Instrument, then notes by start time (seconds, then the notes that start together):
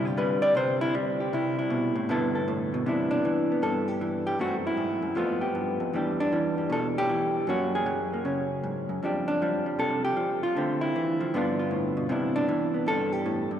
hollow-body jazz guitar
Already playing: C3 D3 G3
0.05 G4
0.17 G3 B4
0.42 D5
0.55 C3 C5
0.81 E4
0.95 G3
1.20 G4
1.33 C3 E4
1.59 E4
1.70 B2
1.95 A2
2.09 G2 D3 B3 E4 A4
2.35 A4
2.48 A2
2.74 B2
2.86 C3 E3 B3 D4 E4
3.11 D4
3.25 E3
3.52 B3
3.62 G2 A4
3.88 G4
4.01 E3
4.27 G4
4.39 F#2 F#3 A3 C4 F#4
4.67 E4
4.77 G#2
5.02 F#2
5.15 F2 F3 A3 B3 F4
5.41 G4
5.55 G2
5.80 F2
5.93 E2 E3 G3 D4 G4
6.20 D4
6.32 E3 G3
6.58 G3
6.70 B2 A4
6.98 G4
7.10 E3
7.47 F#2 F#3 A#3 C#4 F#4
7.75 G#4
7.86 F#3
8.13 A#3
8.25 C#3 C#4
8.63 G#2
8.89 F#2
9.03 F2 F3 G3 D4 G4
9.28 D4
9.42 F3 G3
9.66 G3
9.79 C3 A4
10.05 G4
10.17 F3
10.43 F4
10.56 D3 A3 C4
10.81 E4
10.96 E3
11.20 F3
11.34 G2 D3 B3 D4 F4
11.59 F4
11.71 A2
11.97 B2
12.09 C3 E3 B3 D4 E4
12.36 D4
12.48 E3
12.74 B3
12.86 G2 A4
13.12 G4
13.26 A2
13.51 G2